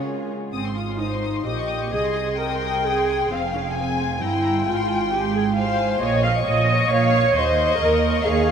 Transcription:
Already playing: cello section C#3, viola section G#3 C#4, violin section F4 G#4
0.52 double bass section G#1, cello section G#2, viola section C4, violin section D#6
0.65 violin section C6
0.76 viola section F4, violin section D#6
0.88 violin section C6
0.99 viola section D#4, violin section C5 D#6
1.13 violin section C6
1.23 violin section D#6
1.35 violin section C6
1.45 double bass section A#1, cello section A#2, viola section G4, violin section D#5 D#6
1.57 violin section C#6
1.69 violin section D#6
1.81 violin section C#6
1.91 double bass section C2, cello section C3, viola section G#4, violin section D#5 D#6
2.04 violin section C6
2.16 violin section D#6
2.28 violin section C6
2.38 viola section A#4, violin section G5 D#6
2.52 violin section C6
2.64 violin section D#6
2.76 violin section C6
2.85 viola section G#4, violin section D#6
2.98 violin section C6
3.09 violin section D#6
3.20 violin section C6
3.30 double bass section F1, cello section F2, viola section C4, violin section F5
3.42 violin section G#5
3.53 viola section C#4, violin section F5
3.65 violin section G#5
3.74 viola section C4, violin section F5 G#5
3.88 violin section G#5
3.99 violin section F5
4.10 violin section G#5
4.20 double bass section G1, cello section G2, viola section E4, violin section G5 A#5
4.33 violin section C6
4.43 violin section A#5
4.54 violin section C6
4.65 double bass section G#1, cello section G#2, viola section F4, violin section G#5
4.76 violin section C6
4.87 violin section G#5
4.99 violin section C6
5.12 viola section G4, violin section G#5
5.22 violin section C6
5.33 viola section G#4, violin section G#5
5.44 violin section C6
5.54 viola section C5, violin section F5 G#5
5.67 violin section C6
5.78 violin section G#5
5.90 violin section C6
6.00 double bass section A#1, cello section A#2, viola section C#5, violin section D#5
6.24 viola section F5, violin section C#6
6.44 double bass section A#1, cello section A#2, violin section C#5, viola section D#5
6.68 violin section C#6
6.90 double bass section A#1, cello section A#2, viola section C#5, violin section F5
7.13 violin section C#6
7.35 double bass section D#2, cello section D#2, viola section C5, violin section D#5 C#6
7.58 violin section C#6
7.80 double bass section D#2, cello section D#2, viola section A#4
8.04 violin section C#6
8.26 double bass section D#2, cello section D#2, viola section G#4, violin section F5

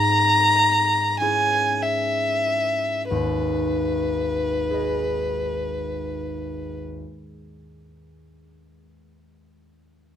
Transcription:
Already playing: harp G#2 G#4, violin A#5
1.20 harp C#4 E4 G#4, violin G#5
1.83 violin E5
3.08 harp G#1 D#2, violin B4
4.70 harp G#4 B4 D#5

